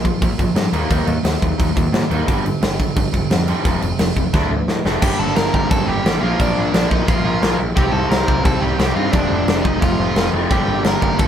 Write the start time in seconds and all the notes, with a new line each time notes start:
0.05 A#2 F3, kick, crash
0.22 A#1 A#2 F3, kick, crash
0.38 G1 A#2 F3, kick, crash
0.55 G2 A#2 F3, snare, crash
0.73 D#2 D#3 G3 A#3 D#4, crash
0.89 D#2 D#3 G3 A#3 D#4, kick, crash
1.07 D#2 D#3 G3 A#3, crash
1.24 D#2 D#3 G3 A#3, snare, crash
1.41 D#2 D#3 G3 A#3, kick, crash
1.58 D#2 D#3 G3 A#3, kick, crash
1.76 D#2 D#3 G3 A#3, kick, crash
1.92 A#2 D#3 G3 A#3, snare, crash
2.10 D#2 D#3 G3 A#3 D#4, crash
2.27 G1 G2 D3 G3, kick, crash
2.44 G2 D3, crash
2.61 G1 G2 D3, snare, crash
2.79 G2 D3, kick, crash
2.96 G1 G2 D3, kick, crash
3.13 F1 G2 D3, kick, crash
3.30 F2 G2 D3, snare, crash
3.47 G2 D3 G3, crash
3.64 F1 F2 C3 F3, kick, crash
3.81 F1 F2 C3, crash
3.99 F1 F2 C3, snare, crash
4.16 F1 F2 C3, kick, crash
4.33 D2 D3 F3 A3 D4, kick, snare
4.50 D2 D3 F3 A3
4.68 A2 D3 F3 A3, snare
4.85 F1 D3 F3 A3 D4, snare
5.02 G1 G2 D3 G3 A#3 D4 G4 G5, kick, crash
5.19 G1 A4 A5
5.36 G1 A#4 A#5, snare, crash
5.53 G1 G2 D3 G3 A#4 A#5, kick
5.71 G1 A4 A5, kick, crash
5.87 G1 G2 D3 G3 G4 G5
6.05 A1 G2 D3 G3, snare, crash
6.21 A#1 A#2 D3 F3 A#3 D4 F4 F5
6.40 A#1 D4 D5, kick, crash
6.56 A#1
6.72 A#1 A#2 F3 A#3 D4 D5, snare, crash
6.91 A#1 D#4 D#5, kick
7.07 A#1 A#2 F3 A#3 F4 F5, kick, crash
7.24 A#1 A#2 F3 A#3
7.41 A#1 A#2 D3 F3 A#3 D4, snare, crash
7.59 A#1
7.75 C2 C3 G3 C4 D#4 G4 G5, kick, crash
7.92 C2 A4 A5
8.10 C2 A#4 A#5, snare, crash
8.26 C2 C3 G3 C4, kick
8.45 C2 A4 A5, kick, crash
8.61 C2 C3 G3 C4 G4 G5
8.78 C2 C3 G3 C4, snare, crash
8.95 G2 C3 G3 C4 D#4 F4 F5
9.12 F1 F2 C3 F3 A3 C4 D4 D5, kick, crash
9.30 F1
9.47 F1, snare, crash
9.64 F1 F2 C3 F3 D#4 D#5, kick
9.81 F1 F4 F5, kick, crash
9.98 F1 F2 C3 F3
10.16 F1 F2 C3 F3, snare, crash
10.33 F1 F2 C3 F3 A3 C4
10.50 G1 G2 D3 G3 A#3 D4 G4 G5, kick, crash
10.67 G1
10.84 G1 A#4 A#5, snare, crash
11.00 G1 G2 D3 G3 A#4 A#5, kick
11.19 G1 A4 A5, kick, crash